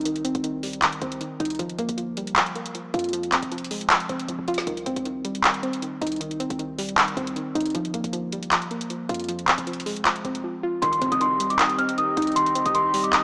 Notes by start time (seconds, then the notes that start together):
Already playing: C2 C4 D#4
0.01 closed hi-hat
0.05 D#3, closed hi-hat
0.16 closed hi-hat
0.25 C4, closed hi-hat
0.35 C2, closed hi-hat
0.44 D#3, closed hi-hat
0.63 G3, open hi-hat
0.73 closed hi-hat
0.82 D#3, clap, closed hi-hat
0.93 closed hi-hat
1.01 C2 C4, closed hi-hat
1.12 closed hi-hat
1.21 D#3, closed hi-hat
1.40 C2 D#4, closed hi-hat
1.45 closed hi-hat
1.50 closed hi-hat
1.55 closed hi-hat
1.59 G1 F3, closed hi-hat
1.69 closed hi-hat
1.79 G1 A#3, closed hi-hat
1.89 G1, closed hi-hat
1.97 F3, closed hi-hat
2.17 G3, closed hi-hat
2.27 closed hi-hat
2.36 A#1 F3, clap, closed hi-hat
2.46 G1, closed hi-hat
2.55 A#3, closed hi-hat
2.66 closed hi-hat
2.75 F3, closed hi-hat
2.94 F2 F4, closed hi-hat
2.99 closed hi-hat
3.04 closed hi-hat
3.09 closed hi-hat
3.13 F3, closed hi-hat
3.23 closed hi-hat
3.32 C4, clap, closed hi-hat
3.43 F1, closed hi-hat
3.52 F3, closed hi-hat
3.58 closed hi-hat
3.64 closed hi-hat
3.71 G#3, open hi-hat
3.81 closed hi-hat
3.90 F3, clap, closed hi-hat
4.00 closed hi-hat
4.09 F1 C4, closed hi-hat
4.19 closed hi-hat
4.28 F1 F3, closed hi-hat
4.39 F1
4.48 F1 F4, closed hi-hat
4.54 snare, closed hi-hat
4.61 closed hi-hat
4.67 C2 D#3, closed hi-hat
4.77 closed hi-hat
4.86 C2 C4, closed hi-hat
4.96 C2, closed hi-hat
5.05 D#3, closed hi-hat
5.25 G3, closed hi-hat
5.35 closed hi-hat
5.44 D#3, clap, closed hi-hat
5.54 closed hi-hat
5.63 C4, closed hi-hat
5.73 closed hi-hat
5.82 D#3, closed hi-hat
6.01 C2 D#4, closed hi-hat
6.07 closed hi-hat
6.12 closed hi-hat
6.16 closed hi-hat
6.21 D#3, closed hi-hat
6.31 closed hi-hat
6.40 C4, closed hi-hat
6.50 C2, closed hi-hat
6.59 D#3, closed hi-hat
6.78 G3, open hi-hat
6.89 closed hi-hat
6.97 D#3, clap, closed hi-hat
7.08 closed hi-hat
7.17 C2 C4, closed hi-hat
7.27 closed hi-hat
7.36 D#3, closed hi-hat
7.55 C2 D#4, closed hi-hat
7.61 closed hi-hat
7.66 closed hi-hat
7.70 closed hi-hat
7.75 G1 F3, closed hi-hat
7.85 closed hi-hat
7.94 G1 A#3, closed hi-hat
8.04 G1, closed hi-hat
8.13 F3, closed hi-hat
8.32 G3, closed hi-hat
8.43 closed hi-hat
8.52 A#1 F3, clap, closed hi-hat
8.62 G1, closed hi-hat
8.71 A#3, closed hi-hat
8.81 closed hi-hat
8.90 F3, closed hi-hat
9.09 F2 F4, closed hi-hat
9.14 closed hi-hat
9.20 closed hi-hat
9.24 closed hi-hat
9.28 F3, closed hi-hat
9.39 closed hi-hat
9.48 C4, clap, closed hi-hat
9.58 F1, closed hi-hat
9.67 F3, closed hi-hat
9.73 closed hi-hat
9.80 closed hi-hat
9.86 G#3, open hi-hat
9.96 closed hi-hat
10.05 F3, clap, closed hi-hat
10.16 closed hi-hat
10.25 F1 C4, closed hi-hat
10.35 closed hi-hat
10.44 F3
10.63 F4
10.82 C2 D#3 C4 D#4 G4 D#5 C6, closed hi-hat, impact
10.93 closed hi-hat
11.01 C2 C4, closed hi-hat
11.12 C2 D#6, closed hi-hat
11.21 D#3 C6, closed hi-hat
11.40 G3, closed hi-hat
11.50 D6, closed hi-hat
11.59 D#3 D#6, clap, closed hi-hat
11.69 closed hi-hat
11.78 C4 F6, closed hi-hat
11.89 closed hi-hat
11.98 D#3 D#6, closed hi-hat
12.17 C2 D#4, closed hi-hat
12.22 closed hi-hat
12.27 closed hi-hat
12.32 closed hi-hat
12.36 D#3 C6, closed hi-hat
12.46 closed hi-hat
12.55 C4, closed hi-hat
12.66 C2 D#6, closed hi-hat
12.75 D#3 C6, closed hi-hat
12.94 G3, open hi-hat
13.04 D6, closed hi-hat
13.13 D#3 D#6, clap, closed hi-hat